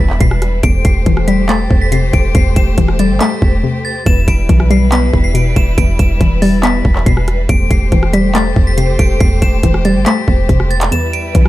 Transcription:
Already playing: E3 G3 B3 E4 B4 B6
0.00 E1 E2
0.10 clap
0.21 E1 B2 C7, kick, closed hi-hat
0.31 cross-stick
0.42 cross-stick, closed hi-hat
0.63 E1 E2 A3 G4 C5 D7, kick, closed hi-hat
0.85 E1 C7, kick, closed hi-hat
1.06 E1 E3, kick, closed hi-hat
1.17 cross-stick
1.28 G3 B6, closed hi-hat
1.49 A3 A6, clap, closed hi-hat
1.71 E1 E2, kick
1.82 B6
1.92 C3 C7, closed hi-hat
2.13 E1 D7, kick, closed hi-hat
2.35 E1 E2 C7, kick, closed hi-hat
2.56 E1 E7, kick, closed hi-hat
2.78 E1 E3, kick, closed hi-hat
2.88 cross-stick
2.99 G3 A6, closed hi-hat
3.10 G1
3.20 A3 B6, clap, closed hi-hat
3.42 E1 E2, kick
3.63 C3
3.85 A6
4.06 E1 E2 G3 E4 B4 E7, kick, closed hi-hat
4.28 E1 D7, kick, closed hi-hat
4.49 B1 E3, kick, closed hi-hat
4.60 cross-stick
4.70 G3 C7, closed hi-hat
4.92 B3 B6, clap, closed hi-hat
5.13 E1 E2, kick
5.24 C7
5.34 B2 D7, closed hi-hat
5.56 E1 E7, kick, closed hi-hat
5.78 E1 E2 D7, kick, closed hi-hat
5.99 E1 E7, kick, closed hi-hat
6.21 E1 E3, kick, closed hi-hat
6.42 G3 A6, open hi-hat
6.63 B3 B6, clap, closed hi-hat
6.85 E1 E2, kick
6.96 clap
7.06 E1 B2 C7, kick, closed hi-hat
7.17 cross-stick
7.28 cross-stick, closed hi-hat
7.49 E1 E2 A3 G4 C5 D7, kick, closed hi-hat
7.71 E1 C7, kick, closed hi-hat
7.92 E1 E3, kick, closed hi-hat
8.03 cross-stick
8.13 G3 B6, closed hi-hat
8.35 A3 A6, clap, closed hi-hat
8.56 E1 E2, kick
8.67 B6
8.77 C3 C7, closed hi-hat
8.99 E1 D7, kick, closed hi-hat
9.20 E1 E2 C7, kick, closed hi-hat
9.42 E1 E7, kick, closed hi-hat
9.63 E1 E3, kick, closed hi-hat
9.74 cross-stick
9.85 G3 A6, closed hi-hat
9.96 G1
10.06 A3 B6, clap, closed hi-hat
10.28 E1 E2, kick
10.49 E1 C3, kick, closed hi-hat
10.60 cross-stick
10.71 A6, closed hi-hat
10.81 clap, closed hi-hat
10.92 E2 G3 E4 B4 E7, closed hi-hat
11.13 D7, closed hi-hat
11.35 B1 E3, kick, closed hi-hat
11.46 cross-stick

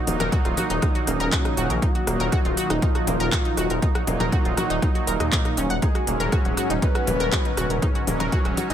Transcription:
Already playing: D#3 F#3 A#3 D#4 F#4
0.07 D#1 A#2 F#3 A#3 D#4, open hi-hat, low conga
0.20 D#1 A#4, cross-stick, closed hi-hat, low conga
0.32 F#4, kick, closed hi-hat
0.45 D#1 F4, cross-stick, closed hi-hat
0.57 F#4, open hi-hat, low conga
0.70 D#1 D#4, closed hi-hat
0.82 D#4, kick, cross-stick, closed hi-hat
0.95 F#4, closed hi-hat
1.07 D#1 A#3 C#4, cross-stick, open hi-hat
1.20 D#1 A#4, closed hi-hat
1.32 F#4, kick, clap, closed hi-hat
1.45 D#4, cross-stick, closed hi-hat
1.57 D#1 A#2 F#3 D#4 F#4, open hi-hat
1.70 A#1 A#4, cross-stick, closed hi-hat
1.82 D#4 F#4, kick, closed hi-hat
1.95 F#4, closed hi-hat
2.07 D#1 A#2 F#3 A#3 D#4, cross-stick, open hi-hat
2.20 D#1 A#4, closed hi-hat
2.32 F#4, kick, cross-stick, closed hi-hat
2.45 D#1 F4, closed hi-hat
2.57 F#4, open hi-hat
2.70 D#1 D#4, cross-stick, closed hi-hat
2.82 D#4 F4, kick, closed hi-hat
2.95 F#4, cross-stick, closed hi-hat
3.07 D#1 A#3, open hi-hat, low conga
3.20 D#1 A#4, closed hi-hat
3.32 F#4, kick, cross-stick, clap, closed hi-hat, low conga
3.45 D#4, closed hi-hat
3.57 D#1 F#4, cross-stick, open hi-hat
3.70 D#1 A#4, closed hi-hat
3.82 D#4, kick, closed hi-hat
3.95 F#4, cross-stick, closed hi-hat
4.07 D#1 A#2 F#3 A#3 D#4, open hi-hat, low conga
4.20 D#1 A#4, cross-stick, closed hi-hat, low conga
4.32 F#4, kick, closed hi-hat
4.45 D#1 F4, closed hi-hat
4.57 F#4, cross-stick, open hi-hat, low conga
4.70 D#1 D#4, closed hi-hat
4.82 D#4, kick, cross-stick, closed hi-hat
4.95 F#4, closed hi-hat
5.07 D#1 A#3 A#4, open hi-hat
5.20 D#2 D#4, cross-stick, closed hi-hat
5.32 D#4, kick, clap, closed hi-hat
5.45 D#4, cross-stick, closed hi-hat
5.57 D#1 C#4, open hi-hat
5.70 D#1 F#5, closed hi-hat
5.82 C#3 G#3 D#4 G#4, kick, closed hi-hat
5.95 F#4, cross-stick, closed hi-hat
6.07 D#1 G#2 F#3 A#3 C#4, open hi-hat
6.20 D#1 A#4, closed hi-hat
6.32 F#4, kick, cross-stick, closed hi-hat
6.45 D#1 F#4, closed hi-hat
6.57 F#4, cross-stick, open hi-hat
6.70 D#1 D#4, closed hi-hat
6.82 D#4 B4, kick, closed hi-hat
6.95 F#4, cross-stick, closed hi-hat
7.07 D#1 A#3, open hi-hat, low conga
7.20 D#1 A#4, cross-stick, closed hi-hat
7.32 F#4, kick, clap, closed hi-hat, low conga
7.45 D#4, closed hi-hat
7.57 D#1 F#4, cross-stick, open hi-hat
7.70 D#1 A#4, closed hi-hat
7.82 D#4, kick, cross-stick, closed hi-hat
7.95 F#4, closed hi-hat
8.07 D#1 G#2 F#3 A#3 C#4, open hi-hat, low conga
8.20 D#1 A#4, cross-stick, closed hi-hat, low conga
8.32 F#4, kick, closed hi-hat
8.45 D#1 F#4, cross-stick, closed hi-hat
8.57 F#4, open hi-hat, low conga
8.70 D#1 D#4, closed hi-hat

